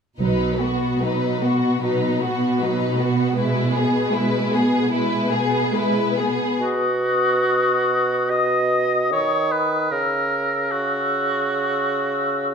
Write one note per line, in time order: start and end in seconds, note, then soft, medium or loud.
0.19 0.98 B1 soft
0.19 6.36 B2 soft
0.19 0.58 F#3 soft
0.19 0.58 D#4 soft
0.19 0.59 B4 soft
0.61 1.01 B3 soft
0.61 1.02 F#4 soft
1.00 1.41 F#3 soft
1.00 1.43 D#4 soft
1.00 1.42 B4 soft
1.42 1.83 B3 soft
1.42 1.84 F#4 soft
1.82 2.19 F#3 soft
1.82 2.20 D#4 soft
1.82 2.20 B4 soft
2.23 2.62 B3 soft
2.23 2.62 F#4 soft
2.23 2.63 F#4 soft
2.61 2.99 F#3 soft
2.61 3.00 D#4 soft
2.61 3.00 B4 soft
2.99 3.36 B3 soft
2.99 3.37 F#4 soft
2.99 3.38 F#4 soft
3.36 3.72 G#3 soft
3.36 3.73 E4 soft
3.36 3.72 B4 soft
3.75 4.14 B3 soft
3.75 4.14 G#4 soft
4.13 4.52 G#3 soft
4.13 4.53 E4 soft
4.13 4.53 B4 soft
4.53 4.92 B3 soft
4.53 4.92 G#4 soft
4.53 4.93 G#4 soft
4.92 5.30 G#3 soft
4.92 5.30 E4 soft
4.92 5.30 B4 soft
5.32 5.74 B3 soft
5.32 5.74 G#4 soft
5.32 5.75 G#4 soft
5.73 6.17 G#3 soft
5.73 6.19 E4 soft
5.73 6.18 B4 soft
6.17 6.61 B3 soft
6.17 6.62 G#4 soft
6.60 9.13 B2 soft
6.60 8.32 F#4 soft
6.60 8.26 D#6 soft
8.30 9.11 D#5 soft
8.30 9.89 D#6 soft
9.12 9.91 D#3 soft
9.12 9.53 C#5 medium
9.52 9.93 B4 medium
9.92 12.54 C#3 soft
9.92 10.73 A#4 soft
9.92 10.69 E6 soft
10.71 12.54 F#4 soft
10.71 12.54 E6 soft